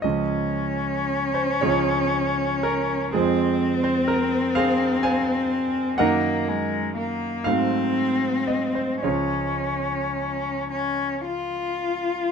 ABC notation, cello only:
X:1
M:6/8
L:1/8
Q:3/8=39
K:Db
V:1 name="Cello"
D6 | C6 | B, A, B, C3 | D3 D F2 |]